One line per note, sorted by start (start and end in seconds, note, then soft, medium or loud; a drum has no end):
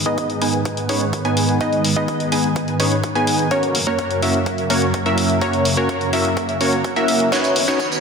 0.00 3.47 G#2 medium
0.00 3.47 D#3 medium
0.00 3.47 B3 medium
0.06 0.39 B3 medium
0.06 0.39 D#4 medium
0.06 0.39 G#4 medium
0.06 0.39 B4 medium
0.06 0.39 D#5 medium
0.18 kick loud
0.18 closed hi-hat medium
0.30 closed hi-hat soft
0.42 0.57 B3 medium
0.42 0.57 D#4 medium
0.42 0.57 G#4 medium
0.42 0.57 B4 medium
0.42 0.57 G#5 medium
0.42 open hi-hat medium
0.53 closed hi-hat soft
0.65 kick loud
0.65 closed hi-hat medium
0.77 closed hi-hat soft
0.89 1.05 B3 medium
0.89 1.05 D#4 medium
0.89 1.05 G#4 medium
0.89 1.05 B4 medium
0.89 1.05 C#5 medium
0.89 open hi-hat loud
1.01 closed hi-hat soft
1.13 kick loud
1.13 closed hi-hat medium
1.25 1.58 B3 medium
1.25 1.58 D#4 medium
1.25 1.58 G#4 medium
1.25 1.58 B4 medium
1.25 1.58 G#5 loud
1.25 1.58 G#5 medium
1.25 closed hi-hat soft
1.37 open hi-hat medium
1.49 closed hi-hat soft
1.61 1.86 B3 medium
1.61 1.86 D#4 medium
1.61 1.86 G#4 medium
1.61 1.86 B4 medium
1.61 1.86 D#5 medium
1.61 1.86 D#5 loud
1.61 kick loud
1.61 closed hi-hat medium
1.73 closed hi-hat soft
1.84 open hi-hat loud
1.96 2.29 B3 medium
1.96 2.29 D#4 medium
1.96 2.29 G#4 medium
1.96 2.29 B4 medium
1.96 2.29 D#5 loud
1.96 2.29 D#5 medium
2.08 kick loud
2.08 closed hi-hat medium
2.20 closed hi-hat soft
2.32 2.48 B3 medium
2.32 2.48 D#4 medium
2.32 2.48 G#4 medium
2.32 2.48 B4 medium
2.32 2.48 G#5 medium
2.32 open hi-hat medium
2.44 closed hi-hat soft
2.56 kick loud
2.56 closed hi-hat medium
2.68 closed hi-hat soft
2.80 2.96 B3 medium
2.80 2.96 D#4 medium
2.80 2.96 G#4 medium
2.80 2.96 B4 medium
2.80 2.96 C#5 medium
2.80 open hi-hat loud
2.92 closed hi-hat soft
3.03 kick loud
3.03 closed hi-hat medium
3.15 3.48 B3 medium
3.15 3.48 D#4 medium
3.15 3.48 G#4 medium
3.15 3.48 B4 medium
3.15 3.48 G#5 loud
3.15 closed hi-hat soft
3.27 open hi-hat medium
3.39 closed hi-hat soft
3.51 7.28 F#2 medium
3.51 7.28 C#3 medium
3.51 7.28 A#3 medium
3.51 3.76 A#3 medium
3.51 3.76 C#4 medium
3.51 3.76 F#4 medium
3.51 3.76 A#4 medium
3.51 3.76 C#5 medium
3.51 3.77 C#5 loud
3.51 kick loud
3.51 closed hi-hat medium
3.63 closed hi-hat soft
3.75 open hi-hat loud
3.87 4.20 A#3 medium
3.87 4.20 C#4 medium
3.87 4.20 F#4 medium
3.87 4.20 A#4 medium
3.87 4.20 C#5 loud
3.99 kick loud
3.99 closed hi-hat medium
4.11 closed hi-hat soft
4.22 4.38 A#3 medium
4.22 4.38 C#4 medium
4.22 4.38 F#4 medium
4.22 4.38 A#4 medium
4.22 4.38 E5 medium
4.22 open hi-hat medium
4.34 closed hi-hat soft
4.46 kick loud
4.46 closed hi-hat medium
4.58 closed hi-hat soft
4.70 4.86 A#3 medium
4.70 4.86 C#4 medium
4.70 4.86 F#4 medium
4.70 4.86 A#4 medium
4.70 4.86 C#5 medium
4.70 open hi-hat loud
4.82 closed hi-hat soft
4.94 kick loud
4.94 closed hi-hat medium
5.06 5.39 A#3 medium
5.06 5.39 C#4 medium
5.06 5.39 F#4 medium
5.06 5.39 A#4 medium
5.06 5.39 E5 loud
5.06 closed hi-hat soft
5.18 open hi-hat medium
5.30 closed hi-hat soft
5.41 5.67 A#3 medium
5.41 5.67 C#4 medium
5.41 5.67 F#4 medium
5.41 5.67 A#4 medium
5.41 5.67 C#5 loud
5.41 5.67 C#5 medium
5.41 kick loud
5.41 closed hi-hat medium
5.53 closed hi-hat soft
5.65 open hi-hat loud
5.77 6.10 A#3 medium
5.77 6.10 C#4 medium
5.77 6.10 F#4 medium
5.77 6.10 A#4 medium
5.77 6.10 C#5 loud
5.89 kick loud
5.89 closed hi-hat medium
6.01 closed hi-hat soft
6.13 6.29 A#3 medium
6.13 6.29 C#4 medium
6.13 6.29 F#4 medium
6.13 6.29 A#4 medium
6.13 6.29 E5 medium
6.13 open hi-hat medium
6.25 closed hi-hat soft
6.37 kick loud
6.37 closed hi-hat medium
6.49 closed hi-hat soft
6.61 6.77 A#3 medium
6.61 6.77 C#4 medium
6.61 6.77 F#4 medium
6.61 6.77 A#4 medium
6.61 6.77 C#5 medium
6.61 open hi-hat loud
6.73 closed hi-hat soft
6.84 kick loud
6.84 closed hi-hat medium
6.96 7.29 A#3 medium
6.96 7.29 C#4 medium
6.96 7.29 F#4 medium
6.96 7.29 A#4 medium
6.96 7.29 E5 loud
6.96 closed hi-hat soft
7.08 open hi-hat medium
7.20 closed hi-hat soft
7.32 8.00 D#3 medium
7.32 8.00 B3 medium
7.32 7.57 C#4 medium
7.32 8.00 C#4 medium
7.32 7.57 D#4 medium
7.32 7.57 F#4 medium
7.32 7.57 B4 medium
7.32 7.57 C#5 medium
7.32 kick loud
7.32 snare soft
7.32 closed hi-hat medium
7.32 tambourine medium
7.32 riser medium
7.44 closed hi-hat soft
7.44 tambourine soft
7.56 open hi-hat loud
7.68 8.00 C#4 medium
7.68 8.00 D#4 medium
7.68 8.00 F#4 medium
7.68 8.00 B4 medium
7.68 8.00 C#5 medium
7.68 snare soft
7.68 tambourine medium
7.80 kick loud
7.80 closed hi-hat medium
7.80 tambourine medium
7.92 closed hi-hat soft
7.92 tambourine soft